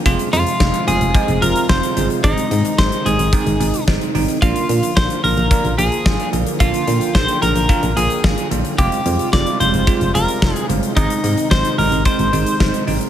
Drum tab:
HH |xxxx-xxxxxxx-xxx|xxxx-xxxxxxx-xox|xxxx-xoxxxxx-xxx|xxxx-xxxxxxx-xxx|
SD |----o-------o---|----o-------o---|----o-------o---|----o-------o---|
BD |o---o---o---o---|o---o---o---o---|o---o---o---o---|o---o---o---o---|

HH |xxxx-xxxxxxx-xxx|xxxx-xoxxxxx-xox|
SD |----o-------o---|----o-------o---|
BD |o---o---o---o---|o---o---o---o---|